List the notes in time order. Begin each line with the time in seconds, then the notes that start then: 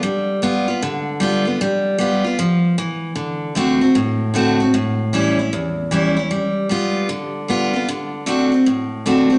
0.03 G3
0.42 G3 B3 F4
0.68 B3 F4
0.82 D3
1.20 G3 B3 F4
1.45 B3 F4
1.61 G3
1.98 G3 B3 F4
2.24 B3 F4
2.39 F3
2.78 E3
3.15 D3
3.55 D3 A3 C4 F#4
3.81 C4 F#4
3.95 A2
4.34 D3 A3 C4 F#4
4.60 C4 F#4
4.74 A2
5.13 E3 G3 C#4 E4
5.39 E4
5.53 E2
5.91 E3 G3 C#4 E4
6.17 C#4 E4
6.31 G3
6.69 G3 B3 F4
7.09 D3
7.48 G3 B3 F4
7.73 B3 F4
7.88 D3
8.26 D3 A3 C4 F#4
8.52 C4 F#4
8.66 A2
9.06 D3 A3 C4 F#4
9.30 C4 F#4